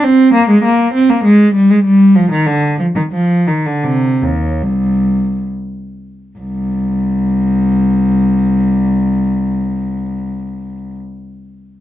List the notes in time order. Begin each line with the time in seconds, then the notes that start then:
0.04 C4
0.34 A#3
0.50 G#3
0.64 A#3
0.94 C4
1.10 A#3
1.25 G#3
1.54 G3
1.70 G#3
1.85 G3
2.15 F3
2.31 D#3
2.46 D3
2.79 F3
2.96 D#3
3.12 F3
3.47 D#3
3.66 D3
3.84 C3
4.22 D#2
4.63 C2
6.39 C2